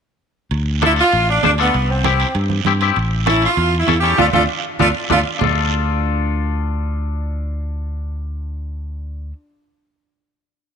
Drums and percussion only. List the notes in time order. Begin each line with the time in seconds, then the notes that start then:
0.51 high conga, high timbale, long guiro
0.82 high conga, high timbale, short guiro
0.96 high timbale, short guiro
1.12 high conga, high timbale, long guiro
1.43 high conga, high timbale, low timbale, short guiro
1.58 high timbale, short guiro
1.74 high conga, high timbale, long guiro
2.04 high conga, high timbale, short guiro
2.20 high timbale, short guiro
2.34 high conga, high timbale, long guiro
2.50 high conga
2.65 high conga, high timbale, short guiro
2.81 high timbale, short guiro
2.96 high conga, high timbale, long guiro
3.26 high conga, high timbale, short guiro
3.42 high timbale, short guiro
3.57 high conga, high timbale, long guiro
3.88 high conga, high timbale, low timbale, short guiro
4.04 high timbale, short guiro
4.18 high conga, high timbale, long guiro
4.33 high conga, high timbale, long guiro
4.79 high conga, high timbale, long guiro
5.10 high conga, high timbale, long guiro
5.41 low conga, low timbale, long guiro